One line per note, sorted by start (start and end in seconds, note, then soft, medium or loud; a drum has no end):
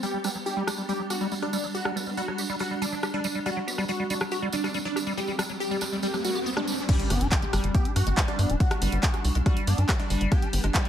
0.00 6.88 G3 medium
0.00 0.06 G3 loud
0.00 3.48 D4 medium
0.00 0.30 G4 loud
0.00 tambourine medium
0.14 0.18 G3 medium
0.24 0.29 G3 loud
0.24 0.37 B3 medium
0.24 cross-stick soft
0.24 tambourine medium
0.35 0.38 F#3 medium
0.35 tambourine soft
0.46 0.58 D4 medium
0.46 0.48 G4 medium
0.46 0.73 G4 medium
0.46 tambourine medium
0.57 0.63 G3 loud
0.67 0.70 G3 loud
0.67 cross-stick medium
0.67 tambourine medium
0.78 0.82 G3 medium
0.78 tambourine soft
0.89 0.93 G3 loud
0.89 1.02 G4 medium
0.89 tambourine soft
1.00 1.02 F#3 medium
1.10 1.31 F#4 medium
1.10 1.13 G4 medium
1.10 cross-stick soft
1.10 tambourine medium
1.21 1.27 G3 loud
1.21 tambourine soft
1.32 1.34 G3 loud
1.32 tambourine soft
1.42 1.47 G3 medium
1.42 1.63 D4 medium
1.42 cross-stick soft
1.53 1.57 G3 loud
1.53 tambourine medium
1.64 1.66 F#3 medium
1.64 tambourine soft
1.75 2.02 F#4 loud
1.75 1.77 G4 medium
1.75 tambourine soft
1.85 1.92 G3 loud
1.85 cross-stick medium
1.96 1.99 G3 loud
1.96 2.03 B3 medium
1.96 tambourine medium
2.06 2.11 G3 medium
2.06 2.14 B3 medium
2.06 tambourine soft
2.17 2.22 G3 loud
2.17 2.45 F#4 medium
2.17 tambourine soft
2.28 2.31 F#3 medium
2.28 cross-stick soft
2.38 2.41 G4 medium
2.38 tambourine medium
2.49 2.56 G3 loud
2.49 tambourine soft
2.59 2.63 G3 loud
2.59 2.74 F#4 medium
2.59 cross-stick soft
2.59 tambourine soft
2.71 2.75 G3 medium
2.82 2.86 G3 loud
2.82 3.02 D4 loud
2.82 tambourine medium
2.92 2.95 F#3 medium
2.92 tambourine soft
3.03 3.06 G4 medium
3.03 cross-stick medium
3.03 tambourine medium
3.14 3.20 G3 loud
3.14 3.34 D4 medium
3.24 3.27 G3 loud
3.24 tambourine medium
3.35 3.39 G3 medium
3.35 tambourine soft
3.46 3.50 G3 loud
3.46 6.91 C4 medium
3.46 3.73 F#4 loud
3.46 cross-stick soft
3.46 tambourine soft
3.46 riser medium
3.57 3.59 F#3 medium
3.67 3.80 B3 medium
3.67 3.70 G4 medium
3.67 tambourine medium
3.78 3.84 G3 loud
3.78 cross-stick soft
3.78 tambourine soft
3.88 3.91 G3 loud
3.88 4.16 F#4 medium
3.88 tambourine soft
4.00 4.04 G3 medium
4.10 4.14 G3 loud
4.10 4.22 D4 medium
4.10 tambourine medium
4.20 4.24 F#3 medium
4.20 cross-stick medium
4.20 tambourine soft
4.31 4.45 F#4 medium
4.31 4.34 G4 medium
4.31 tambourine medium
4.42 4.49 G3 loud
4.52 4.56 G3 loud
4.52 4.74 D4 medium
4.52 tambourine medium
4.64 4.68 G3 medium
4.64 cross-stick soft
4.64 tambourine soft
4.74 4.79 G3 loud
4.74 tambourine soft
4.85 4.88 F#3 medium
4.85 5.06 D4 medium
4.96 4.99 G4 medium
4.96 cross-stick soft
4.96 tambourine medium
5.07 5.13 G3 loud
5.07 tambourine soft
5.17 5.20 G3 loud
5.17 5.45 G4 loud
5.17 5.24 G4 medium
5.17 tambourine medium
5.27 5.32 G3 medium
5.27 5.35 G4 medium
5.27 tambourine soft
5.39 5.43 G3 loud
5.39 cross-stick medium
5.39 tambourine medium
5.49 5.52 F#3 medium
5.49 tambourine soft
5.60 5.88 G4 medium
5.60 5.63 G4 medium
5.60 tambourine soft
5.71 5.77 G3 loud
5.71 tambourine soft
5.81 5.84 G3 loud
5.81 cross-stick soft
5.81 tambourine medium
5.92 5.97 G3 medium
5.92 tambourine soft
6.03 6.07 G3 loud
6.03 6.17 G4 medium
6.03 tambourine soft
6.14 6.16 F#3 medium
6.14 cross-stick soft
6.14 tambourine soft
6.24 6.31 G3 medium
6.24 6.45 F#4 loud
6.24 tambourine medium
6.35 6.39 G4 medium
6.35 tambourine soft
6.46 6.50 B3 loud
6.46 tambourine medium
6.57 6.61 G#3 loud
6.57 6.77 D4 medium
6.57 cross-stick medium
6.67 6.74 G3 medium
6.67 tambourine medium
6.78 tambourine soft
6.89 10.89 G3 medium
6.89 7.12 G3 medium
6.89 10.89 D4 medium
6.89 7.16 G4 loud
6.89 kick loud
6.89 closed hi-hat medium
6.89 crash loud
6.89 impact medium
7.00 closed hi-hat medium
7.10 7.17 G1 loud
7.10 7.22 B3 medium
7.10 7.23 B3 medium
7.10 cross-stick soft
7.10 open hi-hat loud
7.21 7.27 G1 medium
7.21 7.27 D4 loud
7.21 closed hi-hat medium
7.32 7.44 D4 medium
7.32 7.59 G4 loud
7.32 kick loud
7.32 clap loud
7.32 closed hi-hat medium
7.42 7.45 G#3 medium
7.42 closed hi-hat medium
7.53 7.60 G1 medium
7.53 7.76 G3 medium
7.53 cross-stick medium
7.53 open hi-hat medium
7.64 7.70 G1 medium
7.64 closed hi-hat medium
7.75 7.87 B3 medium
7.75 7.88 G4 medium
7.75 kick loud
7.75 closed hi-hat medium
7.85 7.92 D4 loud
7.85 closed hi-hat medium
7.96 8.02 G2 medium
7.96 8.17 F#4 loud
7.96 cross-stick soft
7.96 open hi-hat loud
8.07 8.13 G1 medium
8.07 8.09 G#3 medium
8.07 closed hi-hat medium
8.17 8.40 G3 medium
8.17 kick loud
8.17 clap loud
8.17 closed hi-hat medium
8.28 8.49 D4 medium
8.28 cross-stick soft
8.28 closed hi-hat medium
8.39 8.45 G2 loud
8.39 8.51 B3 medium
8.39 open hi-hat medium
8.50 8.56 D1 medium
8.50 8.56 D4 loud
8.50 closed hi-hat medium
8.60 8.88 F#4 loud
8.60 kick loud
8.60 closed hi-hat medium
8.71 8.74 G#3 medium
8.71 cross-stick medium
8.71 closed hi-hat medium
8.82 8.88 G1 loud
8.82 9.05 G3 medium
8.82 8.89 B3 medium
8.82 open hi-hat loud
8.92 8.99 G1 medium
8.92 8.99 B3 medium
8.92 closed hi-hat medium
9.03 9.15 B3 medium
9.03 9.30 F#4 loud
9.03 kick loud
9.03 clap loud
9.03 closed hi-hat medium
9.14 9.20 D4 loud
9.14 cross-stick soft
9.14 closed hi-hat medium
9.25 9.31 C2 loud
9.25 open hi-hat loud
9.35 9.42 C2 medium
9.35 9.38 G#3 medium
9.35 closed hi-hat medium
9.46 9.69 G3 medium
9.46 9.60 F#4 medium
9.46 kick loud
9.46 cross-stick soft
9.46 closed hi-hat medium
9.57 closed hi-hat medium
9.67 9.74 G2 medium
9.67 9.80 B3 medium
9.67 9.88 D4 loud
9.67 open hi-hat loud
9.78 9.85 G2 medium
9.78 9.84 D4 loud
9.78 closed hi-hat medium
9.89 kick loud
9.89 cross-stick medium
9.89 clap loud
9.89 closed hi-hat medium
10.00 10.02 G#3 medium
10.00 10.20 D4 loud
10.00 closed hi-hat medium
10.10 10.17 G1 loud
10.10 10.33 G3 medium
10.10 open hi-hat medium
10.21 10.27 G1 medium
10.21 closed hi-hat medium
10.32 10.44 B3 medium
10.32 10.59 G4 loud
10.32 kick loud
10.32 cross-stick soft
10.32 closed hi-hat medium
10.42 10.49 D4 loud
10.42 closed hi-hat medium
10.53 10.60 G1 loud
10.53 10.65 B3 medium
10.53 open hi-hat loud
10.64 10.70 G1 medium
10.64 10.66 G#3 medium
10.64 cross-stick soft
10.64 closed hi-hat medium
10.75 10.89 G3 medium
10.75 10.89 G4 loud
10.75 kick loud
10.75 clap loud
10.75 closed hi-hat medium
10.85 closed hi-hat medium